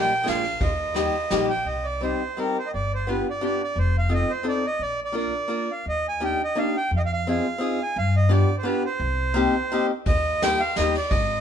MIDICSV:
0, 0, Header, 1, 5, 480
1, 0, Start_track
1, 0, Key_signature, -3, "minor"
1, 0, Tempo, 348635
1, 848, Time_signature, 3, 2, 24, 8
1, 15702, End_track
2, 0, Start_track
2, 0, Title_t, "Accordion"
2, 0, Program_c, 0, 21
2, 11, Note_on_c, 0, 79, 78
2, 376, Note_off_c, 0, 79, 0
2, 396, Note_on_c, 0, 77, 96
2, 862, Note_on_c, 0, 75, 66
2, 872, Note_off_c, 0, 77, 0
2, 2024, Note_off_c, 0, 75, 0
2, 2062, Note_on_c, 0, 79, 74
2, 2286, Note_on_c, 0, 75, 60
2, 2302, Note_off_c, 0, 79, 0
2, 2534, Note_on_c, 0, 74, 66
2, 2560, Note_off_c, 0, 75, 0
2, 2780, Note_off_c, 0, 74, 0
2, 2798, Note_on_c, 0, 72, 61
2, 3287, Note_on_c, 0, 70, 57
2, 3291, Note_off_c, 0, 72, 0
2, 3544, Note_off_c, 0, 70, 0
2, 3556, Note_on_c, 0, 72, 64
2, 3667, Note_on_c, 0, 75, 58
2, 3700, Note_off_c, 0, 72, 0
2, 3738, Note_off_c, 0, 75, 0
2, 3772, Note_on_c, 0, 74, 62
2, 4025, Note_off_c, 0, 74, 0
2, 4049, Note_on_c, 0, 72, 73
2, 4249, Note_on_c, 0, 71, 53
2, 4259, Note_off_c, 0, 72, 0
2, 4504, Note_off_c, 0, 71, 0
2, 4546, Note_on_c, 0, 74, 64
2, 4725, Note_off_c, 0, 74, 0
2, 4745, Note_on_c, 0, 74, 73
2, 4982, Note_off_c, 0, 74, 0
2, 5003, Note_on_c, 0, 74, 67
2, 5211, Note_off_c, 0, 74, 0
2, 5211, Note_on_c, 0, 72, 67
2, 5459, Note_off_c, 0, 72, 0
2, 5480, Note_on_c, 0, 77, 75
2, 5689, Note_off_c, 0, 77, 0
2, 5704, Note_on_c, 0, 75, 72
2, 5916, Note_on_c, 0, 72, 67
2, 5944, Note_off_c, 0, 75, 0
2, 6144, Note_off_c, 0, 72, 0
2, 6179, Note_on_c, 0, 74, 69
2, 6419, Note_off_c, 0, 74, 0
2, 6421, Note_on_c, 0, 75, 72
2, 6635, Note_off_c, 0, 75, 0
2, 6636, Note_on_c, 0, 74, 74
2, 6887, Note_off_c, 0, 74, 0
2, 6950, Note_on_c, 0, 74, 77
2, 7097, Note_off_c, 0, 74, 0
2, 7118, Note_on_c, 0, 74, 69
2, 7863, Note_on_c, 0, 77, 66
2, 7873, Note_off_c, 0, 74, 0
2, 8064, Note_off_c, 0, 77, 0
2, 8106, Note_on_c, 0, 75, 85
2, 8353, Note_off_c, 0, 75, 0
2, 8376, Note_on_c, 0, 80, 80
2, 8583, Note_off_c, 0, 80, 0
2, 8594, Note_on_c, 0, 79, 79
2, 8838, Note_off_c, 0, 79, 0
2, 8868, Note_on_c, 0, 75, 76
2, 9064, Note_on_c, 0, 77, 76
2, 9070, Note_off_c, 0, 75, 0
2, 9314, Note_off_c, 0, 77, 0
2, 9319, Note_on_c, 0, 79, 80
2, 9517, Note_off_c, 0, 79, 0
2, 9588, Note_on_c, 0, 77, 73
2, 9613, Note_on_c, 0, 75, 79
2, 9618, Note_off_c, 0, 77, 0
2, 9662, Note_off_c, 0, 75, 0
2, 9714, Note_on_c, 0, 77, 97
2, 9793, Note_off_c, 0, 77, 0
2, 9813, Note_on_c, 0, 77, 86
2, 10022, Note_off_c, 0, 77, 0
2, 10043, Note_on_c, 0, 77, 73
2, 10768, Note_on_c, 0, 80, 80
2, 10771, Note_off_c, 0, 77, 0
2, 10975, Note_off_c, 0, 80, 0
2, 10986, Note_on_c, 0, 77, 89
2, 11228, Note_off_c, 0, 77, 0
2, 11240, Note_on_c, 0, 75, 79
2, 11448, Note_off_c, 0, 75, 0
2, 11462, Note_on_c, 0, 74, 77
2, 11783, Note_off_c, 0, 74, 0
2, 11810, Note_on_c, 0, 72, 56
2, 11892, Note_on_c, 0, 71, 75
2, 11913, Note_off_c, 0, 72, 0
2, 12159, Note_off_c, 0, 71, 0
2, 12186, Note_on_c, 0, 72, 81
2, 13580, Note_off_c, 0, 72, 0
2, 13867, Note_on_c, 0, 75, 73
2, 14353, Note_off_c, 0, 75, 0
2, 14363, Note_on_c, 0, 79, 98
2, 14593, Note_on_c, 0, 77, 88
2, 14608, Note_off_c, 0, 79, 0
2, 14816, Note_off_c, 0, 77, 0
2, 14834, Note_on_c, 0, 75, 86
2, 15079, Note_off_c, 0, 75, 0
2, 15105, Note_on_c, 0, 74, 79
2, 15278, Note_on_c, 0, 75, 74
2, 15307, Note_off_c, 0, 74, 0
2, 15702, Note_off_c, 0, 75, 0
2, 15702, End_track
3, 0, Start_track
3, 0, Title_t, "Steel-string acoustic guitar"
3, 0, Program_c, 1, 25
3, 0, Note_on_c, 1, 55, 76
3, 0, Note_on_c, 1, 58, 57
3, 0, Note_on_c, 1, 63, 52
3, 0, Note_on_c, 1, 67, 63
3, 155, Note_off_c, 1, 58, 0
3, 156, Note_off_c, 1, 55, 0
3, 164, Note_off_c, 1, 63, 0
3, 164, Note_off_c, 1, 67, 0
3, 324, Note_on_c, 1, 56, 64
3, 336, Note_on_c, 1, 58, 58
3, 349, Note_on_c, 1, 62, 48
3, 360, Note_on_c, 1, 65, 70
3, 601, Note_off_c, 1, 56, 0
3, 608, Note_off_c, 1, 58, 0
3, 611, Note_off_c, 1, 62, 0
3, 619, Note_off_c, 1, 65, 0
3, 1297, Note_on_c, 1, 55, 60
3, 1305, Note_on_c, 1, 58, 50
3, 1315, Note_on_c, 1, 63, 51
3, 1324, Note_on_c, 1, 67, 59
3, 1568, Note_off_c, 1, 55, 0
3, 1568, Note_off_c, 1, 58, 0
3, 1576, Note_off_c, 1, 63, 0
3, 1581, Note_off_c, 1, 67, 0
3, 1794, Note_on_c, 1, 55, 66
3, 1806, Note_on_c, 1, 58, 60
3, 1812, Note_on_c, 1, 63, 53
3, 1819, Note_on_c, 1, 67, 82
3, 2064, Note_off_c, 1, 55, 0
3, 2070, Note_off_c, 1, 58, 0
3, 2073, Note_off_c, 1, 63, 0
3, 2076, Note_off_c, 1, 67, 0
3, 2761, Note_on_c, 1, 55, 50
3, 2770, Note_on_c, 1, 60, 46
3, 2792, Note_on_c, 1, 63, 46
3, 2799, Note_on_c, 1, 67, 57
3, 3032, Note_off_c, 1, 55, 0
3, 3036, Note_off_c, 1, 60, 0
3, 3047, Note_off_c, 1, 63, 0
3, 3051, Note_off_c, 1, 67, 0
3, 3262, Note_on_c, 1, 55, 57
3, 3277, Note_on_c, 1, 60, 47
3, 3283, Note_on_c, 1, 63, 45
3, 3296, Note_on_c, 1, 67, 53
3, 3524, Note_off_c, 1, 55, 0
3, 3532, Note_off_c, 1, 60, 0
3, 3532, Note_off_c, 1, 63, 0
3, 3541, Note_off_c, 1, 67, 0
3, 4228, Note_on_c, 1, 59, 57
3, 4243, Note_on_c, 1, 62, 44
3, 4247, Note_on_c, 1, 65, 46
3, 4249, Note_on_c, 1, 67, 60
3, 4486, Note_off_c, 1, 59, 0
3, 4493, Note_off_c, 1, 65, 0
3, 4495, Note_off_c, 1, 62, 0
3, 4497, Note_off_c, 1, 67, 0
3, 4698, Note_on_c, 1, 62, 55
3, 4700, Note_on_c, 1, 59, 45
3, 4708, Note_on_c, 1, 65, 49
3, 4719, Note_on_c, 1, 67, 51
3, 4957, Note_off_c, 1, 59, 0
3, 4958, Note_off_c, 1, 62, 0
3, 4965, Note_off_c, 1, 65, 0
3, 4965, Note_off_c, 1, 67, 0
3, 5633, Note_on_c, 1, 60, 58
3, 5640, Note_on_c, 1, 63, 49
3, 5644, Note_on_c, 1, 65, 47
3, 5656, Note_on_c, 1, 69, 56
3, 5903, Note_off_c, 1, 60, 0
3, 5903, Note_off_c, 1, 63, 0
3, 5907, Note_off_c, 1, 65, 0
3, 5913, Note_off_c, 1, 69, 0
3, 6102, Note_on_c, 1, 60, 54
3, 6111, Note_on_c, 1, 63, 52
3, 6120, Note_on_c, 1, 65, 38
3, 6120, Note_on_c, 1, 69, 52
3, 6373, Note_off_c, 1, 60, 0
3, 6378, Note_off_c, 1, 65, 0
3, 6379, Note_off_c, 1, 63, 0
3, 6382, Note_off_c, 1, 69, 0
3, 7053, Note_on_c, 1, 58, 50
3, 7061, Note_on_c, 1, 62, 49
3, 7074, Note_on_c, 1, 65, 50
3, 7091, Note_on_c, 1, 70, 65
3, 7331, Note_off_c, 1, 58, 0
3, 7334, Note_off_c, 1, 62, 0
3, 7341, Note_off_c, 1, 65, 0
3, 7350, Note_off_c, 1, 70, 0
3, 7541, Note_on_c, 1, 58, 52
3, 7552, Note_on_c, 1, 62, 44
3, 7558, Note_on_c, 1, 65, 47
3, 7566, Note_on_c, 1, 70, 61
3, 7820, Note_off_c, 1, 58, 0
3, 7826, Note_off_c, 1, 62, 0
3, 7829, Note_off_c, 1, 65, 0
3, 7833, Note_off_c, 1, 70, 0
3, 8538, Note_on_c, 1, 58, 49
3, 8546, Note_on_c, 1, 62, 46
3, 8552, Note_on_c, 1, 63, 56
3, 8559, Note_on_c, 1, 67, 54
3, 8802, Note_off_c, 1, 58, 0
3, 8807, Note_off_c, 1, 62, 0
3, 8810, Note_off_c, 1, 63, 0
3, 8813, Note_off_c, 1, 67, 0
3, 9022, Note_on_c, 1, 58, 59
3, 9031, Note_on_c, 1, 62, 56
3, 9040, Note_on_c, 1, 63, 51
3, 9042, Note_on_c, 1, 67, 60
3, 9286, Note_off_c, 1, 58, 0
3, 9292, Note_off_c, 1, 62, 0
3, 9293, Note_off_c, 1, 63, 0
3, 9296, Note_off_c, 1, 67, 0
3, 10009, Note_on_c, 1, 60, 61
3, 10016, Note_on_c, 1, 63, 54
3, 10032, Note_on_c, 1, 68, 67
3, 10037, Note_on_c, 1, 65, 53
3, 10259, Note_off_c, 1, 63, 0
3, 10261, Note_off_c, 1, 60, 0
3, 10271, Note_off_c, 1, 65, 0
3, 10272, Note_off_c, 1, 68, 0
3, 10441, Note_on_c, 1, 60, 59
3, 10459, Note_on_c, 1, 63, 59
3, 10471, Note_on_c, 1, 65, 50
3, 10475, Note_on_c, 1, 68, 66
3, 10711, Note_off_c, 1, 60, 0
3, 10721, Note_off_c, 1, 63, 0
3, 10723, Note_off_c, 1, 65, 0
3, 10728, Note_off_c, 1, 68, 0
3, 11413, Note_on_c, 1, 62, 58
3, 11419, Note_on_c, 1, 59, 55
3, 11419, Note_on_c, 1, 65, 65
3, 11438, Note_on_c, 1, 67, 74
3, 11671, Note_off_c, 1, 59, 0
3, 11673, Note_off_c, 1, 62, 0
3, 11674, Note_off_c, 1, 65, 0
3, 11684, Note_off_c, 1, 67, 0
3, 11884, Note_on_c, 1, 59, 65
3, 11891, Note_on_c, 1, 62, 59
3, 11910, Note_on_c, 1, 65, 62
3, 11918, Note_on_c, 1, 67, 65
3, 12148, Note_off_c, 1, 59, 0
3, 12151, Note_off_c, 1, 62, 0
3, 12161, Note_off_c, 1, 65, 0
3, 12163, Note_off_c, 1, 67, 0
3, 12858, Note_on_c, 1, 58, 87
3, 12875, Note_on_c, 1, 60, 65
3, 12884, Note_on_c, 1, 63, 64
3, 12890, Note_on_c, 1, 67, 88
3, 13125, Note_off_c, 1, 58, 0
3, 13135, Note_off_c, 1, 60, 0
3, 13136, Note_off_c, 1, 63, 0
3, 13141, Note_off_c, 1, 67, 0
3, 13378, Note_on_c, 1, 58, 75
3, 13388, Note_on_c, 1, 60, 63
3, 13393, Note_on_c, 1, 63, 69
3, 13403, Note_on_c, 1, 67, 73
3, 13631, Note_off_c, 1, 58, 0
3, 13633, Note_off_c, 1, 60, 0
3, 13638, Note_off_c, 1, 63, 0
3, 13640, Note_off_c, 1, 67, 0
3, 14350, Note_on_c, 1, 55, 60
3, 14360, Note_on_c, 1, 63, 49
3, 14365, Note_on_c, 1, 58, 52
3, 14371, Note_on_c, 1, 67, 71
3, 14595, Note_off_c, 1, 55, 0
3, 14596, Note_off_c, 1, 63, 0
3, 14601, Note_off_c, 1, 58, 0
3, 14604, Note_off_c, 1, 67, 0
3, 14836, Note_on_c, 1, 58, 54
3, 14842, Note_on_c, 1, 55, 58
3, 14858, Note_on_c, 1, 63, 54
3, 14867, Note_on_c, 1, 67, 72
3, 15073, Note_off_c, 1, 58, 0
3, 15076, Note_off_c, 1, 55, 0
3, 15085, Note_off_c, 1, 63, 0
3, 15086, Note_off_c, 1, 67, 0
3, 15702, End_track
4, 0, Start_track
4, 0, Title_t, "Upright bass"
4, 0, Program_c, 2, 32
4, 393, Note_on_c, 2, 34, 75
4, 694, Note_off_c, 2, 34, 0
4, 835, Note_on_c, 2, 39, 81
4, 1464, Note_off_c, 2, 39, 0
4, 1806, Note_on_c, 2, 34, 72
4, 2126, Note_off_c, 2, 34, 0
4, 2276, Note_on_c, 2, 36, 63
4, 2915, Note_off_c, 2, 36, 0
4, 3773, Note_on_c, 2, 31, 71
4, 4390, Note_off_c, 2, 31, 0
4, 5174, Note_on_c, 2, 29, 82
4, 5796, Note_off_c, 2, 29, 0
4, 6598, Note_on_c, 2, 34, 62
4, 7230, Note_off_c, 2, 34, 0
4, 8065, Note_on_c, 2, 39, 64
4, 8695, Note_off_c, 2, 39, 0
4, 9515, Note_on_c, 2, 41, 83
4, 10138, Note_off_c, 2, 41, 0
4, 10963, Note_on_c, 2, 43, 96
4, 11576, Note_off_c, 2, 43, 0
4, 12386, Note_on_c, 2, 36, 90
4, 13020, Note_off_c, 2, 36, 0
4, 13861, Note_on_c, 2, 39, 83
4, 14479, Note_off_c, 2, 39, 0
4, 14843, Note_on_c, 2, 39, 80
4, 15138, Note_off_c, 2, 39, 0
4, 15302, Note_on_c, 2, 32, 84
4, 15702, Note_off_c, 2, 32, 0
4, 15702, End_track
5, 0, Start_track
5, 0, Title_t, "Drums"
5, 374, Note_on_c, 9, 38, 52
5, 374, Note_on_c, 9, 51, 42
5, 512, Note_off_c, 9, 38, 0
5, 512, Note_off_c, 9, 51, 0
5, 608, Note_on_c, 9, 51, 37
5, 746, Note_off_c, 9, 51, 0
5, 834, Note_on_c, 9, 51, 35
5, 838, Note_on_c, 9, 36, 77
5, 972, Note_off_c, 9, 51, 0
5, 976, Note_off_c, 9, 36, 0
5, 1316, Note_on_c, 9, 38, 56
5, 1316, Note_on_c, 9, 51, 42
5, 1454, Note_off_c, 9, 38, 0
5, 1454, Note_off_c, 9, 51, 0
5, 1799, Note_on_c, 9, 38, 57
5, 1799, Note_on_c, 9, 51, 43
5, 1936, Note_off_c, 9, 38, 0
5, 1936, Note_off_c, 9, 51, 0
5, 13845, Note_on_c, 9, 51, 44
5, 13855, Note_on_c, 9, 36, 82
5, 13982, Note_off_c, 9, 51, 0
5, 13993, Note_off_c, 9, 36, 0
5, 14351, Note_on_c, 9, 38, 66
5, 14351, Note_on_c, 9, 51, 53
5, 14488, Note_off_c, 9, 38, 0
5, 14488, Note_off_c, 9, 51, 0
5, 14816, Note_on_c, 9, 38, 54
5, 14816, Note_on_c, 9, 51, 41
5, 14954, Note_off_c, 9, 38, 0
5, 14954, Note_off_c, 9, 51, 0
5, 15072, Note_on_c, 9, 51, 44
5, 15210, Note_off_c, 9, 51, 0
5, 15292, Note_on_c, 9, 51, 44
5, 15297, Note_on_c, 9, 36, 78
5, 15430, Note_off_c, 9, 51, 0
5, 15435, Note_off_c, 9, 36, 0
5, 15702, End_track
0, 0, End_of_file